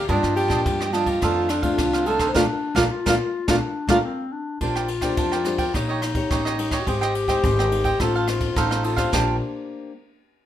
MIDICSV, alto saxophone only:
0, 0, Header, 1, 2, 480
1, 0, Start_track
1, 0, Key_signature, -2, "major"
1, 0, Tempo, 564972
1, 80, Time_signature, 4, 2, 24, 8
1, 8886, End_track
2, 0, Start_track
2, 0, Title_t, "Alto saxophone"
2, 0, Program_c, 0, 65
2, 91, Note_on_c, 0, 62, 82
2, 304, Note_off_c, 0, 62, 0
2, 310, Note_on_c, 0, 67, 94
2, 792, Note_on_c, 0, 65, 85
2, 805, Note_off_c, 0, 67, 0
2, 1278, Note_on_c, 0, 62, 83
2, 1291, Note_off_c, 0, 65, 0
2, 1383, Note_on_c, 0, 65, 99
2, 1395, Note_off_c, 0, 62, 0
2, 1757, Note_on_c, 0, 69, 87
2, 1770, Note_off_c, 0, 65, 0
2, 1944, Note_on_c, 0, 72, 62
2, 1957, Note_off_c, 0, 69, 0
2, 2001, Note_off_c, 0, 72, 0
2, 2011, Note_on_c, 0, 65, 95
2, 2065, Note_off_c, 0, 65, 0
2, 2356, Note_on_c, 0, 65, 89
2, 2415, Note_off_c, 0, 65, 0
2, 2627, Note_on_c, 0, 65, 92
2, 2678, Note_off_c, 0, 65, 0
2, 2977, Note_on_c, 0, 65, 82
2, 3029, Note_off_c, 0, 65, 0
2, 3323, Note_on_c, 0, 65, 92
2, 3380, Note_off_c, 0, 65, 0
2, 8886, End_track
0, 0, End_of_file